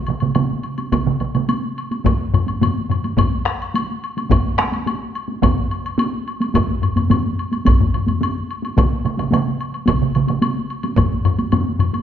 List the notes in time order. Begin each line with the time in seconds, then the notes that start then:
0.07 taiko mid, high woodblock
0.20 taiko mid, taiko high, high woodblock
0.35 taiko mid, taiko high, high woodblock
0.63 high woodblock
0.78 taiko high, high woodblock
0.92 taiko, taiko mid, taiko high, high woodblock
1.06 taiko mid
1.20 taiko mid, high woodblock
1.35 taiko mid, taiko high, high woodblock
1.49 taiko high, high woodblock
1.78 high woodblock
1.91 taiko high, high woodblock
2.05 taiko, taiko low-mid, taiko high, high woodblock
2.34 taiko low-mid, high woodblock
2.48 taiko high, high woodblock
2.61 taiko low-mid, taiko high, high woodblock
2.90 taiko low-mid, high woodblock
3.04 taiko high, high woodblock
3.17 taiko, taiko low-mid, taiko high, high woodblock
3.45 taiko rim, high woodblock
3.62 high woodblock
3.74 taiko high, high woodblock
4.04 high woodblock
4.17 taiko high, high woodblock
4.30 taiko, taiko low-mid, taiko mid, taiko high, high woodblock
4.58 taiko rim, taiko high, high woodblock
4.72 taiko high, high woodblock
4.87 taiko high, high woodblock
5.15 high woodblock
5.28 taiko high
5.42 taiko, taiko low-mid, taiko mid, taiko high, high woodblock
5.71 high woodblock
5.86 high woodblock
5.98 taiko high, high woodblock
6.28 high woodblock
6.40 taiko high, high woodblock
6.54 taiko, taiko low-mid, taiko high, high woodblock
6.82 taiko low-mid, high woodblock
6.97 taiko low-mid, taiko high, high woodblock
7.10 taiko low-mid, taiko high, high woodblock
7.39 high woodblock
7.52 taiko high, high woodblock
7.65 taiko, taiko low-mid, taiko high, high woodblock
7.80 taiko low-mid
7.94 taiko low-mid, high woodblock
8.07 taiko low-mid, taiko high, high woodblock
8.21 taiko high, high woodblock
8.51 high woodblock
8.62 taiko high, high woodblock
8.77 taiko, taiko mid, taiko high, high woodblock
9.05 taiko mid, high woodblock
9.17 taiko mid, taiko high, high woodblock
9.31 taiko mid, taiko high, high woodblock
9.61 high woodblock
9.74 high woodblock
9.86 taiko, taiko mid, taiko high, high woodblock
10.02 taiko mid
10.15 taiko mid, high woodblock
10.27 taiko mid, taiko high, high woodblock
10.42 taiko high, high woodblock
10.70 high woodblock
10.83 taiko high, high woodblock
10.97 taiko, taiko low-mid, taiko high, high woodblock
11.25 taiko low-mid, high woodblock
11.38 taiko high, high woodblock
11.52 taiko low-mid, taiko high, high woodblock
11.79 taiko low-mid, high woodblock
11.93 taiko high, high woodblock